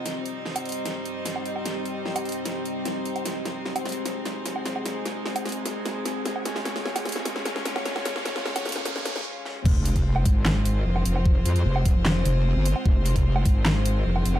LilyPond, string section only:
\new Staff \with { instrumentName = "String section" } { \time 4/4 \key f \minor \tempo 4 = 150 << { <c' ees' c''>1~ | <c' ees' c''>1~ | <c' ees' c''>1~ | <c' ees' c''>1 |
<des' f' des''>1~ | <des' f' des''>1 | <c' f' c''>1~ | <c' f' c''>1~ |
<c' f' c''>1 | } \\ { g1~ | g1 | aes1~ | aes1~ |
aes1~ | aes1 | aes1~ | aes1~ |
aes1 | } >> }